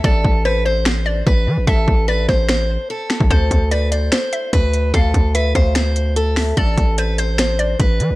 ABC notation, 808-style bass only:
X:1
M:4/4
L:1/16
Q:1/4=147
K:Am
V:1 name="808-style bass" clef=bass
A,,,2 A,,,8- A,,,2 A,,,2 E, A,,, | A,,,2 A,,,4 A,,,4- A,,, z4 A,,, | D,,2 D,,6 z4 D,,4 | D,,2 D,,4 D,,8- D,,2 |
A,,,2 A,,,8- A,,,2 A,,,2 E, A,,, |]